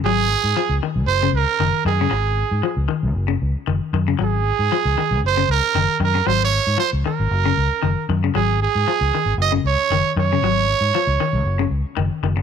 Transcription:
X:1
M:4/4
L:1/16
Q:"Swing 16ths" 1/4=116
K:Abmix
V:1 name="Trumpet"
A6 z2 c2 B4 A2- | A6 z8 z2 | A8 c2 B4 B2 | c d3 c2 B8 z2 |
A2 A6 e2 d4 d2- | d8- d2 z6 |]
V:2 name="Clean electric guitar" clef=bass
G,2 z2 F,2 E,2 z D,2 z E,2 E, D, | z4 F,2 E,2 z D,2 z E,2 E, D, | G,2 z2 F,2 E,2 z D,2 z E,2 E, z | G,2 z2 F,2 E,2 z D,2 z E,2 E, D, |
G,2 z2 F,2 E,2 z D,2 z E,2 E, D, | G,2 z2 F,2 E,2 z D,2 z E,2 E, z |]
V:3 name="Fingered electric bass" clef=bass
A,,,3 A,, z D,, z D,, G,,,2 D,, z G,,, z G,,2 | A,,,3 A,, z D,, z D,, G,,,2 D,, z G,,, z G,,2 | A,,,3 A,, z D,, z D,, G,,,2 D,, z G,,, z G,,2 | A,,,3 A,, z D,, z A,,, G,,,2 D,, z G,,, z G,,2 |
A,,,3 A,, z D,, z A,,, G,,,2 D,, z G,,, z G,,2 | A,,,3 A,, z D,, z D,, G,,,2 D,, z G,,, z G,,,2 |]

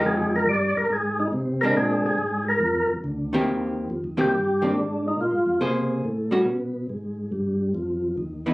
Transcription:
X:1
M:4/4
L:1/8
Q:"Swing" 1/4=140
K:Eb
V:1 name="Tonewheel organ"
A B d B A E z B | A A2 B2 z3 | z3 G2 D2 E | F2 z6 |
z8 |]
V:2 name="Hollow-body jazz guitar"
[F,A,EG]2 z4 z [A,CD]- | [A,CD]2 z4 z [E,B,CG]- | [E,B,CG]2 z [E,B,CG] z [E,B,CG] z2 | z2 [B,Ac]2 z [G,^C^F] z2 |
z6 z [_F,_CE] |]
V:3 name="Tonewheel organ" clef=bass
F,,2 G,, G,, A,,2 C,2 | B,, B,, A,,2 F,, F,, D,,2 | E,,2 (3F,, E,, C,, G,,2 A,,2 | (3B,, A,, F,, C,2 =A,,2 =B,,2 |
A,,2 G,,2 F,,2 E,,2 |]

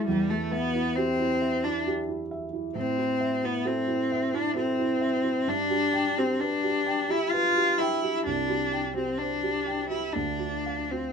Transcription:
X:1
M:3/4
L:1/16
Q:1/4=66
K:Ephr
V:1 name="Grand piano"
E,, E e E G E e E G E e E | [K:Am] A,, E e E A E e E A E e E | G,, G g G B G g G B G g G | C,, G g G c G g G D,, F f F |]
V:2 name="Cello"
G, A, B,2 C3 D z4 | [K:Am] C3 B, C3 D C4 | D3 C D3 E F2 E2 | D3 C D3 E D3 C |]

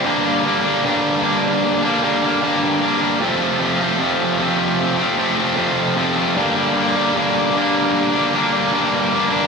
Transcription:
X:1
M:4/4
L:1/16
Q:1/4=76
K:Gdor
V:1 name="Distorted electric guitar"
[G,,D,G,B,D] [G,B,D] [D,G,B,D] [G,B,D] [G,,D,G,B,D]2 [D,G,B,D]3 [G,B,D] [D,G,B,D] [G,B,D] [G,,D,G,B,D]2 [D,G,B,D] [G,B,D] | [F,,C,F,A,C] [F,A,C] [C,F,A,C] [F,A,C] [F,,C,F,A,C]2 [C,F,A,C]3 [F,A,C] [C,F,A,C] [F,A,C] [F,,C,F,A,C]2 [C,F,A,C] [F,A,C] | [G,,D,G,B,D] [G,B,D] [D,G,B,D] [G,B,D] [G,,D,G,B,D]2 [D,G,B,D]3 [G,B,D] [D,G,B,D] [G,B,D] [G,,D,G,B,D]2 [D,G,B,D] [G,B,D] |]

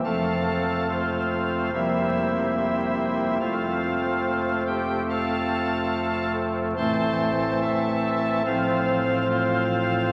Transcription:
X:1
M:4/4
L:1/8
Q:1/4=72
K:F
V:1 name="Pipe organ"
[Afa]2 [Fcf]2 [Ece]2 [Ece]2 | [Fcf]3 [Gg] [Afa]3 z | [cac']2 [Aea]2 [Fcf]2 [Fcf]2 |]
V:2 name="Pipe organ" clef=bass
[F,,,F,,F,A,C]4 [F,,,F,,G,B,C]4 | [F,,,F,,F,A,C]8 | [A,,,A,,E,A,C]4 [A,,,A,,F,C]4 |]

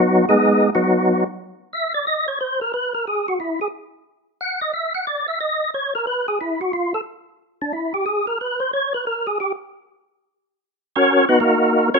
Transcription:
X:1
M:4/4
L:1/8
Q:"Swing" 1/4=180
K:G#m
V:1 name="Tonewheel organ"
[F,B,DF] [G,B,DG]3 [F,B,DF]3 z | z2 e =d ^d c ^B A | B A G F E G z2 | z2 f d e f =d e |
d2 c A B G E F | ^E =A z3 =D =E =G | G A B ^B c =B A G | =G z6 z |
z [CFAc]2 [B,DFB] [A,DFA]3 [CFAc] |]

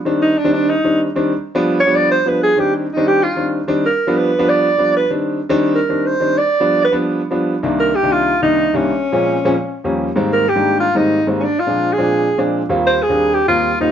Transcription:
X:1
M:4/4
L:1/16
Q:1/4=190
K:Cm
V:1 name="Alto saxophone"
z2 E2 D2 D2 E4 z4 | z6 _d2 =d2 c2 =B2 A2 | G2 C2 E2 G2 F4 z4 | B4 =B4 d6 B2 |
z8 B4 c4 | d6 =B2 z8 | z2 B2 G2 F4 E4 _D2- | _D12- D2 z2 |
z2 B2 G4 F2 E4 z3/2 _D/2 | D2 F4 A8 z2 | z2 c2 A4 G2 F4 E2 |]
V:2 name="Grand piano" clef=bass
[E,G,CD]4 z [E,G,CD]3 z2 [E,G,CD]3 z [E,G,CD]2 | z3 [F,G,=B,D]3 z [F,G,B,D]3 z2 [F,G,B,D]3 z | [E,G,CD]4 z [E,G,CD]3 z2 [E,G,CD]3 z [E,G,CD]2 | z3 [F,G,=B,D]3 z [F,G,B,D]3 z2 [F,G,B,D]3 z |
[E,G,CD]4 z [E,G,CD]3 z2 [E,G,CD]3 z [E,G,CD]2 | z3 [F,G,=B,D]3 z [F,G,B,D]3 z2 [F,G,B,D]3 z | [C,,E,G,B,D]4 z [C,,E,G,B,D]3 z2 [C,,E,G,B,D]3 z [C,,E,G,B,D]2 | z3 [B,,F,A,C_D]3 z [B,,F,A,CD] z4 [E,,F,G,B,D]3 z |
[A,,E,G,B,C]4 z [A,,E,G,B,D]3 z2 [A,,E,G,B,C]3 z [A,,E,G,B,C]2 | z3 [B,,F,A,CD]3 z [B,,F,A,CD]3 z2 [B,,F,A,CD]3 z | [E,,G,B,CF]4 z [E,,G,B,CD]3 z2 [E,,G,B,CF]3 z [E,,G,B,CF]2 |]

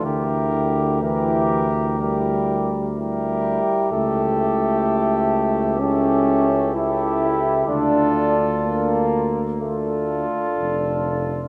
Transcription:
X:1
M:4/4
L:1/8
Q:1/4=63
K:Dm
V:1 name="Cornet"
B2 B2 B z B2 | A4 A2 A2 | A3 z A4 |]
V:2 name="Flugelhorn"
G2 G2 G z G2 | G4 G2 G2 | F3 z F4 |]
V:3 name="Euphonium"
E2 E2 E z E2 | E4 E2 E2 | D3 z D4 |]
V:4 name="Trombone"
D,2 E, z G,2 G,2 | A,4 ^C2 E2 | D z B,2 A,2 z2 |]
V:5 name="Tuba" clef=bass
D,,6- D,, z | ^C,,8 | D,,4- D,, z F,,,2 |]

